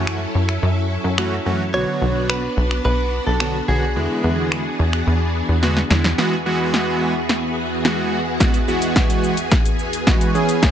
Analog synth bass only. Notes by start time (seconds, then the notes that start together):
Already playing: F#2
0.35 F#2
0.63 F#2
1.04 F#2
1.46 F#2
1.74 B1
2.02 B1
2.57 B1
2.85 B1
3.27 B1
3.68 B1
3.96 E2
4.24 E2
4.79 E2
5.07 E2
5.49 E2
5.90 E2